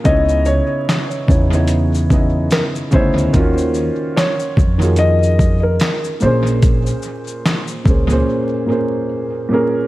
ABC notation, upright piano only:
X:1
M:4/4
L:1/16
Q:"Swing 16ths" 1/4=73
K:Bbm
V:1 name="Upright piano"
[D,_CE_Fd]4 z2 [D,CEFd] [D,CEFd]2 z [D,CEFe]3 z [D,CEFd] z | [E,B,DFG]4- [E,B,DFG] z2 [E,B,FGA]4- [E,B,FGA] z2 [B,,B,DAc]2- | [B,,B,DAc]4 z2 [B,,B,DAc] [B,,B,DAc]2 z [B,,B,DAc]3 z [B,,B,DAB] z |]